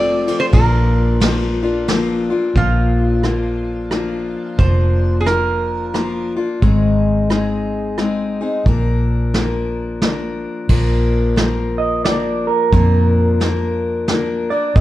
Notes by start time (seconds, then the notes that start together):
Already playing: F1 F3 A3 C4 F4 D5
0.27 F3 A3 C4 F4, ride
0.40 C5
0.53 A#1 A#2 F3 A#3 D4 F4 A#4, kick, ride
1.20 F3 A#3 D4 F4, snare, ride
1.63 A#3 D4 F4
1.88 F3 A#3 D4 F4, snare, ride
2.30 A#3 D4 F4
2.55 A#1 A#2 F3 A#3 D4 F4, kick, closed hi-hat
3.24 F3 A#3 D4 F4, cross-stick, closed hi-hat
3.91 F3 A#3 D4 F4, cross-stick, closed hi-hat
4.59 F1 A#2 F3 A#3 D4 F4 C5, kick, closed hi-hat
5.20 G#4
5.26 F3 A#3 D4 F4 A#4, cross-stick, closed hi-hat
5.94 F3 A#3 D4 F4, cross-stick, closed hi-hat
6.36 A#3 D4 F4
6.62 G#1 G#2 D#3 G#3 C4 D#4 G#4, kick, closed hi-hat
7.30 G#3 C4 D#4 G#4, cross-stick, closed hi-hat
7.98 G#3 C4 D#4 G#4, cross-stick, closed hi-hat
8.41 G#3 C4 D#4 G#4
8.66 A#1 A#2 F3 A#3 D4 A#4, kick, closed hi-hat
9.34 F3 A#3 D4 A#4, snare, closed hi-hat
10.02 F3 A#3 D4 A#4, snare, closed hi-hat
10.69 A#1 A#2 F3 A#3 D4 A#4, kick, crash
11.36 F3 A#3 A#4, snare, closed hi-hat
11.78 D#5
12.05 F3 A#3 D4 A#4 D5, snare, closed hi-hat
12.47 A#4
12.72 F2 A#2 F3 A#3 D4 A#4, kick, closed hi-hat
13.40 F3 A#3 D4 A#4, snare, closed hi-hat
14.08 F3 A#3 D4 A#4, snare, closed hi-hat
14.50 A#3 D4 A#4 D5
14.76 G#1 G#2 D#3 G#3 C4 D#5, kick, closed hi-hat